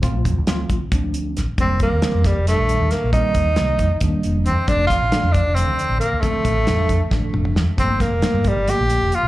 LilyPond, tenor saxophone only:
\new Staff \with { instrumentName = "Tenor saxophone" } { \time 7/8 \key f \mixolydian \tempo 4 = 135 r2. r8 | c'8 bes4 g8 a4 bes8 | ees'2 r4 c'8 | d'8 f'4 d'8 c'4 bes8 |
a2 r4. | c'8 bes4 g8 g'4 f'8 | }